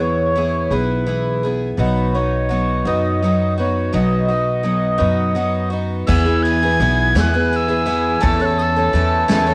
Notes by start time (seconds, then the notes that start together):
Already playing: E2 G#4
0.00 B3 E4 C#5
0.36 E3 B3 E4 G#4
0.70 B1 E3 B3 E4 G#4 B4
1.06 E3 B3 E4 G#4
1.43 B3 E4 G#4
1.77 B1 B2 F#3 B3 D#4 F#4 B4
2.15 B3 D#4 F#4 C#5
2.49 F#3 B3 D#4 F#4
2.85 F#2 B2 F#3 B3 D#4 F#4 D#5
3.22 F#3 B3 D#4 F#4
3.58 B3 D#4 F#4 C#5
3.92 B1 B2 F#3 B3 D#4 F#4 D#5
4.28 B3 D#4 F#4
4.63 F#3 B3 D#4 F#4
4.98 F#2 B2 F#3 B3 D#4 F#4
5.35 F#3 B3 D#4 F#4
5.70 B3 D#4 F#4
6.07 E2 E3 B3 E4 G#4 B4 G#5 E6, kick, crash
6.25 B3 E4 G#4
6.43 G#6, ride
6.63 B3 E4 G#4
6.80 B1 E3 B3 E4 G#4, ride
7.15 E2 E3 B3 E4 G#4 G#6, snare, ride
7.20 F#6
7.34 B3 E4 G#4
7.51 F#6, ride
7.56 E6
7.68 B3 E4 G#4
7.86 E3 B3 E4 G#4, ride
8.21 E2 E3 A3 C#4 A4 C#5 A5 E6, kick, ride
8.40 A3 C#4 A4 F#6
8.45 E6
8.59 D#6 E6, ride
8.77 A3 C#4 A4
8.93 E2 E3 A3 C#4 A4, ride
9.28 E2 E3 A3 C#4 A4, snare, ride
9.47 A3 C#4 A4